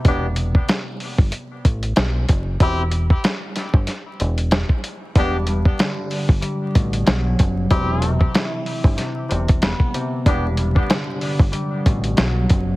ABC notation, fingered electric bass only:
X:1
M:4/4
L:1/16
Q:"Swing 16ths" 1/4=94
K:Em
V:1 name="Fingered electric bass" clef=bass
E,,,4 z3 G,,, z2 A,,,2 B,,,2 F,,,2 | E,,,4 z3 G,,, z2 E,,,3 z3 | E,,,4 z3 G,,, z2 A,,,2 B,,,2 F,,,2 | E,,,4 z3 G,,, z2 E,,,3 z3 |
E,,,4 z3 G,,, z2 A,,,2 B,,,2 F,,,2 |]